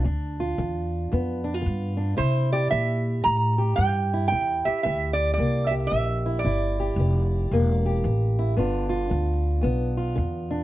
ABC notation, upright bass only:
X:1
M:4/4
L:1/8
Q:"Swing" 1/4=113
K:C
V:1 name="Upright bass" clef=bass
D,,2 E,,2 F,,2 G,,2 | C,2 _B,,2 A,,2 G,,2 | E,, z D,,2 C,,2 _B,,,2 | G,,,2 F,,,2 E,,,2 A,,,2 |
G,,,2 D,,2 B,,,2 E,,2 |]